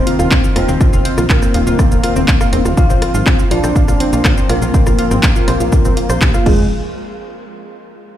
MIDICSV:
0, 0, Header, 1, 7, 480
1, 0, Start_track
1, 0, Tempo, 491803
1, 787, Time_signature, 4, 2, 24, 8
1, 7978, End_track
2, 0, Start_track
2, 0, Title_t, "Synth bell"
2, 0, Program_c, 0, 98
2, 0, Note_on_c, 0, 72, 96
2, 453, Note_off_c, 0, 72, 0
2, 548, Note_on_c, 0, 72, 95
2, 1173, Note_off_c, 0, 72, 0
2, 1267, Note_on_c, 0, 70, 91
2, 2613, Note_off_c, 0, 70, 0
2, 2707, Note_on_c, 0, 77, 101
2, 3333, Note_off_c, 0, 77, 0
2, 3427, Note_on_c, 0, 74, 101
2, 4293, Note_off_c, 0, 74, 0
2, 4386, Note_on_c, 0, 70, 98
2, 5013, Note_off_c, 0, 70, 0
2, 5107, Note_on_c, 0, 70, 93
2, 6306, Note_on_c, 0, 68, 96
2, 6307, Note_off_c, 0, 70, 0
2, 6486, Note_off_c, 0, 68, 0
2, 7978, End_track
3, 0, Start_track
3, 0, Title_t, "Synth arpeggio sound"
3, 0, Program_c, 1, 84
3, 65, Note_on_c, 1, 65, 77
3, 65, Note_on_c, 1, 77, 53
3, 175, Note_off_c, 1, 65, 0
3, 175, Note_off_c, 1, 77, 0
3, 187, Note_on_c, 1, 65, 104
3, 187, Note_on_c, 1, 77, 71
3, 300, Note_off_c, 1, 65, 0
3, 300, Note_off_c, 1, 77, 0
3, 304, Note_on_c, 1, 72, 75
3, 305, Note_on_c, 1, 60, 104
3, 403, Note_off_c, 1, 60, 0
3, 403, Note_off_c, 1, 72, 0
3, 427, Note_on_c, 1, 65, 83
3, 428, Note_on_c, 1, 77, 56
3, 533, Note_off_c, 1, 65, 0
3, 533, Note_off_c, 1, 77, 0
3, 545, Note_on_c, 1, 65, 106
3, 545, Note_on_c, 1, 77, 71
3, 662, Note_off_c, 1, 65, 0
3, 662, Note_off_c, 1, 77, 0
3, 668, Note_on_c, 1, 60, 100
3, 668, Note_on_c, 1, 72, 72
3, 762, Note_off_c, 1, 60, 0
3, 762, Note_off_c, 1, 72, 0
3, 786, Note_on_c, 1, 65, 85
3, 786, Note_on_c, 1, 77, 59
3, 897, Note_off_c, 1, 65, 0
3, 897, Note_off_c, 1, 77, 0
3, 909, Note_on_c, 1, 65, 104
3, 909, Note_on_c, 1, 77, 72
3, 1021, Note_off_c, 1, 65, 0
3, 1021, Note_off_c, 1, 77, 0
3, 1026, Note_on_c, 1, 60, 106
3, 1026, Note_on_c, 1, 72, 74
3, 1124, Note_off_c, 1, 60, 0
3, 1124, Note_off_c, 1, 72, 0
3, 1148, Note_on_c, 1, 65, 79
3, 1149, Note_on_c, 1, 77, 53
3, 1254, Note_off_c, 1, 65, 0
3, 1254, Note_off_c, 1, 77, 0
3, 1266, Note_on_c, 1, 65, 103
3, 1266, Note_on_c, 1, 77, 75
3, 1383, Note_off_c, 1, 65, 0
3, 1383, Note_off_c, 1, 77, 0
3, 1389, Note_on_c, 1, 60, 101
3, 1389, Note_on_c, 1, 72, 72
3, 1482, Note_off_c, 1, 60, 0
3, 1482, Note_off_c, 1, 72, 0
3, 1506, Note_on_c, 1, 77, 57
3, 1507, Note_on_c, 1, 65, 82
3, 1617, Note_off_c, 1, 65, 0
3, 1617, Note_off_c, 1, 77, 0
3, 1628, Note_on_c, 1, 65, 103
3, 1629, Note_on_c, 1, 77, 74
3, 1740, Note_off_c, 1, 65, 0
3, 1741, Note_off_c, 1, 77, 0
3, 1746, Note_on_c, 1, 60, 100
3, 1746, Note_on_c, 1, 72, 73
3, 1844, Note_off_c, 1, 60, 0
3, 1844, Note_off_c, 1, 72, 0
3, 1869, Note_on_c, 1, 65, 76
3, 1869, Note_on_c, 1, 77, 53
3, 1975, Note_off_c, 1, 77, 0
3, 1976, Note_off_c, 1, 65, 0
3, 1987, Note_on_c, 1, 65, 102
3, 1987, Note_on_c, 1, 77, 72
3, 2103, Note_off_c, 1, 65, 0
3, 2103, Note_off_c, 1, 77, 0
3, 2109, Note_on_c, 1, 60, 104
3, 2109, Note_on_c, 1, 72, 74
3, 2202, Note_off_c, 1, 60, 0
3, 2202, Note_off_c, 1, 72, 0
3, 2226, Note_on_c, 1, 65, 86
3, 2226, Note_on_c, 1, 77, 61
3, 2337, Note_off_c, 1, 65, 0
3, 2337, Note_off_c, 1, 77, 0
3, 2349, Note_on_c, 1, 65, 105
3, 2349, Note_on_c, 1, 77, 72
3, 2460, Note_off_c, 1, 65, 0
3, 2461, Note_off_c, 1, 77, 0
3, 2466, Note_on_c, 1, 60, 106
3, 2466, Note_on_c, 1, 72, 74
3, 2563, Note_off_c, 1, 60, 0
3, 2564, Note_off_c, 1, 72, 0
3, 2589, Note_on_c, 1, 65, 75
3, 2589, Note_on_c, 1, 77, 55
3, 2695, Note_off_c, 1, 65, 0
3, 2695, Note_off_c, 1, 77, 0
3, 2707, Note_on_c, 1, 65, 103
3, 2707, Note_on_c, 1, 77, 72
3, 2823, Note_off_c, 1, 65, 0
3, 2823, Note_off_c, 1, 77, 0
3, 2830, Note_on_c, 1, 60, 103
3, 2830, Note_on_c, 1, 72, 73
3, 2923, Note_off_c, 1, 60, 0
3, 2923, Note_off_c, 1, 72, 0
3, 2947, Note_on_c, 1, 65, 82
3, 2947, Note_on_c, 1, 77, 56
3, 3058, Note_off_c, 1, 65, 0
3, 3058, Note_off_c, 1, 77, 0
3, 3070, Note_on_c, 1, 65, 102
3, 3070, Note_on_c, 1, 77, 73
3, 3181, Note_off_c, 1, 65, 0
3, 3181, Note_off_c, 1, 77, 0
3, 3187, Note_on_c, 1, 60, 104
3, 3187, Note_on_c, 1, 72, 72
3, 3284, Note_off_c, 1, 60, 0
3, 3284, Note_off_c, 1, 72, 0
3, 3309, Note_on_c, 1, 65, 76
3, 3309, Note_on_c, 1, 77, 53
3, 3415, Note_off_c, 1, 65, 0
3, 3415, Note_off_c, 1, 77, 0
3, 3426, Note_on_c, 1, 65, 110
3, 3426, Note_on_c, 1, 77, 74
3, 3543, Note_off_c, 1, 65, 0
3, 3543, Note_off_c, 1, 77, 0
3, 3549, Note_on_c, 1, 60, 101
3, 3549, Note_on_c, 1, 72, 70
3, 3642, Note_off_c, 1, 60, 0
3, 3642, Note_off_c, 1, 72, 0
3, 3667, Note_on_c, 1, 65, 83
3, 3667, Note_on_c, 1, 77, 59
3, 3777, Note_off_c, 1, 65, 0
3, 3778, Note_off_c, 1, 77, 0
3, 3789, Note_on_c, 1, 65, 103
3, 3789, Note_on_c, 1, 77, 71
3, 3901, Note_off_c, 1, 65, 0
3, 3901, Note_off_c, 1, 77, 0
3, 3907, Note_on_c, 1, 60, 102
3, 3907, Note_on_c, 1, 72, 72
3, 4004, Note_off_c, 1, 60, 0
3, 4004, Note_off_c, 1, 72, 0
3, 4029, Note_on_c, 1, 77, 55
3, 4030, Note_on_c, 1, 65, 79
3, 4136, Note_off_c, 1, 65, 0
3, 4136, Note_off_c, 1, 77, 0
3, 4147, Note_on_c, 1, 65, 106
3, 4148, Note_on_c, 1, 77, 73
3, 4263, Note_off_c, 1, 65, 0
3, 4264, Note_off_c, 1, 77, 0
3, 4270, Note_on_c, 1, 60, 107
3, 4270, Note_on_c, 1, 72, 76
3, 4363, Note_off_c, 1, 60, 0
3, 4363, Note_off_c, 1, 72, 0
3, 4387, Note_on_c, 1, 65, 78
3, 4387, Note_on_c, 1, 77, 55
3, 4498, Note_off_c, 1, 65, 0
3, 4498, Note_off_c, 1, 77, 0
3, 4509, Note_on_c, 1, 65, 100
3, 4510, Note_on_c, 1, 77, 70
3, 4621, Note_off_c, 1, 65, 0
3, 4621, Note_off_c, 1, 77, 0
3, 4626, Note_on_c, 1, 60, 102
3, 4626, Note_on_c, 1, 72, 71
3, 4724, Note_off_c, 1, 60, 0
3, 4724, Note_off_c, 1, 72, 0
3, 4749, Note_on_c, 1, 65, 79
3, 4749, Note_on_c, 1, 77, 54
3, 4855, Note_off_c, 1, 65, 0
3, 4855, Note_off_c, 1, 77, 0
3, 4867, Note_on_c, 1, 65, 105
3, 4867, Note_on_c, 1, 77, 73
3, 4983, Note_off_c, 1, 65, 0
3, 4983, Note_off_c, 1, 77, 0
3, 4989, Note_on_c, 1, 60, 102
3, 4989, Note_on_c, 1, 72, 74
3, 5082, Note_off_c, 1, 60, 0
3, 5082, Note_off_c, 1, 72, 0
3, 5107, Note_on_c, 1, 65, 85
3, 5107, Note_on_c, 1, 77, 60
3, 5218, Note_off_c, 1, 65, 0
3, 5218, Note_off_c, 1, 77, 0
3, 5230, Note_on_c, 1, 65, 102
3, 5230, Note_on_c, 1, 77, 72
3, 5341, Note_off_c, 1, 65, 0
3, 5341, Note_off_c, 1, 77, 0
3, 5346, Note_on_c, 1, 60, 108
3, 5346, Note_on_c, 1, 72, 73
3, 5443, Note_off_c, 1, 60, 0
3, 5444, Note_off_c, 1, 72, 0
3, 5469, Note_on_c, 1, 65, 76
3, 5470, Note_on_c, 1, 77, 52
3, 5575, Note_off_c, 1, 65, 0
3, 5575, Note_off_c, 1, 77, 0
3, 5587, Note_on_c, 1, 65, 101
3, 5587, Note_on_c, 1, 77, 73
3, 5703, Note_off_c, 1, 65, 0
3, 5703, Note_off_c, 1, 77, 0
3, 5709, Note_on_c, 1, 60, 103
3, 5710, Note_on_c, 1, 72, 76
3, 5802, Note_off_c, 1, 60, 0
3, 5803, Note_off_c, 1, 72, 0
3, 5826, Note_on_c, 1, 65, 78
3, 5827, Note_on_c, 1, 77, 52
3, 5924, Note_off_c, 1, 65, 0
3, 5924, Note_off_c, 1, 77, 0
3, 5950, Note_on_c, 1, 72, 103
3, 5950, Note_on_c, 1, 84, 75
3, 6061, Note_off_c, 1, 72, 0
3, 6061, Note_off_c, 1, 84, 0
3, 6067, Note_on_c, 1, 67, 86
3, 6164, Note_off_c, 1, 67, 0
3, 6189, Note_on_c, 1, 65, 109
3, 6189, Note_on_c, 1, 77, 74
3, 6282, Note_off_c, 1, 65, 0
3, 6282, Note_off_c, 1, 77, 0
3, 6306, Note_on_c, 1, 65, 94
3, 6530, Note_off_c, 1, 65, 0
3, 7978, End_track
4, 0, Start_track
4, 0, Title_t, "Analog synth lead"
4, 0, Program_c, 2, 81
4, 0, Note_on_c, 2, 60, 105
4, 452, Note_off_c, 2, 60, 0
4, 546, Note_on_c, 2, 60, 99
4, 1172, Note_off_c, 2, 60, 0
4, 1267, Note_on_c, 2, 58, 111
4, 2613, Note_off_c, 2, 58, 0
4, 2707, Note_on_c, 2, 65, 108
4, 3333, Note_off_c, 2, 65, 0
4, 3426, Note_on_c, 2, 62, 107
4, 4292, Note_off_c, 2, 62, 0
4, 4388, Note_on_c, 2, 58, 102
4, 5013, Note_off_c, 2, 58, 0
4, 5107, Note_on_c, 2, 58, 110
4, 6301, Note_off_c, 2, 58, 0
4, 6307, Note_on_c, 2, 56, 97
4, 6486, Note_off_c, 2, 56, 0
4, 7978, End_track
5, 0, Start_track
5, 0, Title_t, "Analog synth pad"
5, 0, Program_c, 3, 89
5, 0, Note_on_c, 3, 51, 81
5, 0, Note_on_c, 3, 58, 74
5, 0, Note_on_c, 3, 65, 88
5, 767, Note_off_c, 3, 58, 0
5, 787, Note_on_c, 3, 60, 74
5, 2668, Note_off_c, 3, 51, 0
5, 2668, Note_off_c, 3, 65, 0
5, 2687, Note_off_c, 3, 60, 0
5, 2707, Note_on_c, 3, 53, 82
5, 2707, Note_on_c, 3, 60, 90
5, 2708, Note_on_c, 3, 58, 74
5, 6271, Note_off_c, 3, 53, 0
5, 6271, Note_off_c, 3, 58, 0
5, 6271, Note_off_c, 3, 60, 0
5, 7978, End_track
6, 0, Start_track
6, 0, Title_t, "Analog synth bass"
6, 0, Program_c, 4, 38
6, 189, Note_on_c, 4, 27, 82
6, 278, Note_off_c, 4, 27, 0
6, 546, Note_on_c, 4, 27, 94
6, 640, Note_off_c, 4, 27, 0
6, 669, Note_on_c, 4, 27, 83
6, 758, Note_off_c, 4, 27, 0
6, 909, Note_on_c, 4, 27, 78
6, 998, Note_off_c, 4, 27, 0
6, 1148, Note_on_c, 4, 34, 80
6, 1238, Note_off_c, 4, 34, 0
6, 1506, Note_on_c, 4, 27, 96
6, 1600, Note_off_c, 4, 27, 0
6, 1629, Note_on_c, 4, 27, 86
6, 1719, Note_off_c, 4, 27, 0
6, 1869, Note_on_c, 4, 27, 76
6, 1958, Note_off_c, 4, 27, 0
6, 2109, Note_on_c, 4, 27, 82
6, 2199, Note_off_c, 4, 27, 0
6, 2466, Note_on_c, 4, 27, 92
6, 2560, Note_off_c, 4, 27, 0
6, 2589, Note_on_c, 4, 27, 86
6, 2679, Note_off_c, 4, 27, 0
6, 2829, Note_on_c, 4, 34, 78
6, 2919, Note_off_c, 4, 34, 0
6, 3069, Note_on_c, 4, 32, 80
6, 3158, Note_off_c, 4, 32, 0
6, 3427, Note_on_c, 4, 34, 97
6, 3520, Note_off_c, 4, 34, 0
6, 3549, Note_on_c, 4, 34, 84
6, 3639, Note_off_c, 4, 34, 0
6, 3789, Note_on_c, 4, 34, 78
6, 3879, Note_off_c, 4, 34, 0
6, 4029, Note_on_c, 4, 34, 84
6, 4119, Note_off_c, 4, 34, 0
6, 4387, Note_on_c, 4, 34, 93
6, 4480, Note_off_c, 4, 34, 0
6, 4509, Note_on_c, 4, 34, 83
6, 4599, Note_off_c, 4, 34, 0
6, 4749, Note_on_c, 4, 34, 78
6, 4838, Note_off_c, 4, 34, 0
6, 4990, Note_on_c, 4, 32, 81
6, 5079, Note_off_c, 4, 32, 0
6, 5347, Note_on_c, 4, 34, 99
6, 5440, Note_off_c, 4, 34, 0
6, 5470, Note_on_c, 4, 34, 84
6, 5559, Note_off_c, 4, 34, 0
6, 5709, Note_on_c, 4, 34, 76
6, 5799, Note_off_c, 4, 34, 0
6, 5949, Note_on_c, 4, 34, 80
6, 6038, Note_off_c, 4, 34, 0
6, 6307, Note_on_c, 4, 29, 95
6, 6530, Note_off_c, 4, 29, 0
6, 7978, End_track
7, 0, Start_track
7, 0, Title_t, "Drums"
7, 67, Note_on_c, 9, 42, 112
7, 165, Note_off_c, 9, 42, 0
7, 190, Note_on_c, 9, 37, 55
7, 190, Note_on_c, 9, 82, 58
7, 287, Note_off_c, 9, 37, 0
7, 287, Note_off_c, 9, 82, 0
7, 306, Note_on_c, 9, 36, 120
7, 307, Note_on_c, 9, 39, 114
7, 307, Note_on_c, 9, 82, 54
7, 404, Note_off_c, 9, 36, 0
7, 405, Note_off_c, 9, 39, 0
7, 405, Note_off_c, 9, 82, 0
7, 430, Note_on_c, 9, 82, 55
7, 527, Note_off_c, 9, 82, 0
7, 547, Note_on_c, 9, 37, 80
7, 547, Note_on_c, 9, 42, 106
7, 644, Note_off_c, 9, 37, 0
7, 644, Note_off_c, 9, 42, 0
7, 669, Note_on_c, 9, 82, 57
7, 767, Note_off_c, 9, 82, 0
7, 787, Note_on_c, 9, 36, 123
7, 787, Note_on_c, 9, 37, 55
7, 787, Note_on_c, 9, 82, 55
7, 884, Note_off_c, 9, 36, 0
7, 885, Note_off_c, 9, 37, 0
7, 885, Note_off_c, 9, 82, 0
7, 909, Note_on_c, 9, 82, 55
7, 1007, Note_off_c, 9, 82, 0
7, 1026, Note_on_c, 9, 42, 103
7, 1124, Note_off_c, 9, 42, 0
7, 1149, Note_on_c, 9, 37, 82
7, 1149, Note_on_c, 9, 82, 55
7, 1247, Note_off_c, 9, 37, 0
7, 1247, Note_off_c, 9, 82, 0
7, 1267, Note_on_c, 9, 36, 115
7, 1267, Note_on_c, 9, 39, 114
7, 1267, Note_on_c, 9, 82, 55
7, 1364, Note_off_c, 9, 36, 0
7, 1364, Note_off_c, 9, 39, 0
7, 1364, Note_off_c, 9, 82, 0
7, 1389, Note_on_c, 9, 37, 54
7, 1389, Note_on_c, 9, 82, 57
7, 1487, Note_off_c, 9, 37, 0
7, 1487, Note_off_c, 9, 82, 0
7, 1506, Note_on_c, 9, 42, 105
7, 1604, Note_off_c, 9, 42, 0
7, 1629, Note_on_c, 9, 82, 58
7, 1727, Note_off_c, 9, 82, 0
7, 1747, Note_on_c, 9, 36, 114
7, 1747, Note_on_c, 9, 37, 83
7, 1747, Note_on_c, 9, 82, 55
7, 1844, Note_off_c, 9, 36, 0
7, 1844, Note_off_c, 9, 37, 0
7, 1844, Note_off_c, 9, 82, 0
7, 1869, Note_on_c, 9, 82, 59
7, 1967, Note_off_c, 9, 82, 0
7, 1987, Note_on_c, 9, 37, 58
7, 1987, Note_on_c, 9, 42, 109
7, 2084, Note_off_c, 9, 37, 0
7, 2084, Note_off_c, 9, 42, 0
7, 2109, Note_on_c, 9, 82, 59
7, 2207, Note_off_c, 9, 82, 0
7, 2227, Note_on_c, 9, 36, 122
7, 2227, Note_on_c, 9, 39, 115
7, 2227, Note_on_c, 9, 82, 57
7, 2324, Note_off_c, 9, 36, 0
7, 2324, Note_off_c, 9, 39, 0
7, 2324, Note_off_c, 9, 82, 0
7, 2350, Note_on_c, 9, 37, 82
7, 2350, Note_on_c, 9, 82, 56
7, 2447, Note_off_c, 9, 37, 0
7, 2447, Note_off_c, 9, 82, 0
7, 2467, Note_on_c, 9, 42, 105
7, 2565, Note_off_c, 9, 42, 0
7, 2590, Note_on_c, 9, 37, 57
7, 2590, Note_on_c, 9, 82, 59
7, 2688, Note_off_c, 9, 37, 0
7, 2688, Note_off_c, 9, 82, 0
7, 2707, Note_on_c, 9, 36, 120
7, 2707, Note_on_c, 9, 82, 60
7, 2805, Note_off_c, 9, 36, 0
7, 2805, Note_off_c, 9, 82, 0
7, 2830, Note_on_c, 9, 82, 58
7, 2928, Note_off_c, 9, 82, 0
7, 2948, Note_on_c, 9, 37, 84
7, 2948, Note_on_c, 9, 42, 102
7, 3045, Note_off_c, 9, 37, 0
7, 3045, Note_off_c, 9, 42, 0
7, 3070, Note_on_c, 9, 82, 57
7, 3168, Note_off_c, 9, 82, 0
7, 3187, Note_on_c, 9, 36, 117
7, 3188, Note_on_c, 9, 37, 54
7, 3188, Note_on_c, 9, 39, 118
7, 3188, Note_on_c, 9, 82, 57
7, 3285, Note_off_c, 9, 36, 0
7, 3286, Note_off_c, 9, 37, 0
7, 3286, Note_off_c, 9, 39, 0
7, 3286, Note_off_c, 9, 82, 0
7, 3310, Note_on_c, 9, 82, 57
7, 3408, Note_off_c, 9, 82, 0
7, 3427, Note_on_c, 9, 42, 106
7, 3525, Note_off_c, 9, 42, 0
7, 3550, Note_on_c, 9, 37, 82
7, 3550, Note_on_c, 9, 82, 60
7, 3647, Note_off_c, 9, 37, 0
7, 3647, Note_off_c, 9, 82, 0
7, 3667, Note_on_c, 9, 36, 109
7, 3667, Note_on_c, 9, 82, 58
7, 3764, Note_off_c, 9, 36, 0
7, 3765, Note_off_c, 9, 82, 0
7, 3790, Note_on_c, 9, 37, 57
7, 3790, Note_on_c, 9, 82, 60
7, 3887, Note_off_c, 9, 37, 0
7, 3887, Note_off_c, 9, 82, 0
7, 3907, Note_on_c, 9, 42, 106
7, 4005, Note_off_c, 9, 42, 0
7, 4029, Note_on_c, 9, 82, 60
7, 4127, Note_off_c, 9, 82, 0
7, 4147, Note_on_c, 9, 36, 117
7, 4147, Note_on_c, 9, 37, 88
7, 4147, Note_on_c, 9, 39, 115
7, 4147, Note_on_c, 9, 82, 57
7, 4244, Note_off_c, 9, 36, 0
7, 4244, Note_off_c, 9, 37, 0
7, 4244, Note_off_c, 9, 39, 0
7, 4244, Note_off_c, 9, 82, 0
7, 4270, Note_on_c, 9, 82, 58
7, 4367, Note_off_c, 9, 82, 0
7, 4387, Note_on_c, 9, 37, 54
7, 4387, Note_on_c, 9, 42, 102
7, 4485, Note_off_c, 9, 37, 0
7, 4485, Note_off_c, 9, 42, 0
7, 4509, Note_on_c, 9, 82, 61
7, 4607, Note_off_c, 9, 82, 0
7, 4627, Note_on_c, 9, 36, 120
7, 4627, Note_on_c, 9, 82, 60
7, 4724, Note_off_c, 9, 36, 0
7, 4724, Note_off_c, 9, 82, 0
7, 4749, Note_on_c, 9, 37, 84
7, 4749, Note_on_c, 9, 82, 59
7, 4847, Note_off_c, 9, 37, 0
7, 4847, Note_off_c, 9, 82, 0
7, 4866, Note_on_c, 9, 42, 102
7, 4964, Note_off_c, 9, 42, 0
7, 4988, Note_on_c, 9, 37, 55
7, 4988, Note_on_c, 9, 82, 60
7, 5086, Note_off_c, 9, 37, 0
7, 5086, Note_off_c, 9, 82, 0
7, 5106, Note_on_c, 9, 39, 126
7, 5106, Note_on_c, 9, 82, 59
7, 5107, Note_on_c, 9, 36, 120
7, 5204, Note_off_c, 9, 36, 0
7, 5204, Note_off_c, 9, 39, 0
7, 5204, Note_off_c, 9, 82, 0
7, 5229, Note_on_c, 9, 82, 57
7, 5327, Note_off_c, 9, 82, 0
7, 5346, Note_on_c, 9, 37, 84
7, 5346, Note_on_c, 9, 42, 103
7, 5444, Note_off_c, 9, 37, 0
7, 5444, Note_off_c, 9, 42, 0
7, 5469, Note_on_c, 9, 82, 60
7, 5567, Note_off_c, 9, 82, 0
7, 5586, Note_on_c, 9, 36, 112
7, 5586, Note_on_c, 9, 37, 54
7, 5586, Note_on_c, 9, 82, 59
7, 5684, Note_off_c, 9, 36, 0
7, 5684, Note_off_c, 9, 37, 0
7, 5684, Note_off_c, 9, 82, 0
7, 5708, Note_on_c, 9, 82, 63
7, 5806, Note_off_c, 9, 82, 0
7, 5827, Note_on_c, 9, 42, 105
7, 5924, Note_off_c, 9, 42, 0
7, 5949, Note_on_c, 9, 37, 85
7, 5949, Note_on_c, 9, 82, 62
7, 6047, Note_off_c, 9, 37, 0
7, 6047, Note_off_c, 9, 82, 0
7, 6067, Note_on_c, 9, 36, 118
7, 6067, Note_on_c, 9, 39, 123
7, 6067, Note_on_c, 9, 82, 59
7, 6164, Note_off_c, 9, 36, 0
7, 6165, Note_off_c, 9, 39, 0
7, 6165, Note_off_c, 9, 82, 0
7, 6190, Note_on_c, 9, 37, 55
7, 6190, Note_on_c, 9, 82, 60
7, 6287, Note_off_c, 9, 37, 0
7, 6287, Note_off_c, 9, 82, 0
7, 6306, Note_on_c, 9, 36, 116
7, 6307, Note_on_c, 9, 49, 89
7, 6404, Note_off_c, 9, 36, 0
7, 6405, Note_off_c, 9, 49, 0
7, 7978, End_track
0, 0, End_of_file